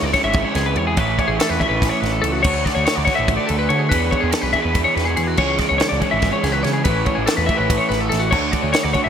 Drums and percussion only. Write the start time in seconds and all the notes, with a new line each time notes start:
0.14 kick, snare, ride
0.33 kick, ride
0.55 snare, ride
0.76 ride
0.97 kick, ride
1.19 kick, ride
1.40 snare, ride
1.61 kick, ride
1.82 kick, snare, ride
2.03 snare, ride
2.24 ride
2.44 kick, crash
2.66 kick, snare, ride
2.86 snare, ride
3.07 kick, snare, ride
3.28 kick, ride
3.49 ride
3.70 ride
3.92 kick, ride
4.12 kick, ride
4.32 snare, ride
4.53 kick, ride
4.75 kick, ride
4.97 snare, ride
5.17 ride
5.37 kick, crash
5.58 kick, snare, ride
5.80 snare, ride
6.02 kick, ride
6.22 kick, snare, ride
6.44 snare, ride
6.64 snare, ride
6.85 kick, ride
7.06 kick, ride
7.27 snare, ride
7.49 kick, ride
7.70 kick, ride
7.91 snare, ride
8.12 snare, ride
8.32 kick, crash
8.53 kick, ride
8.74 snare, ride
8.94 kick, ride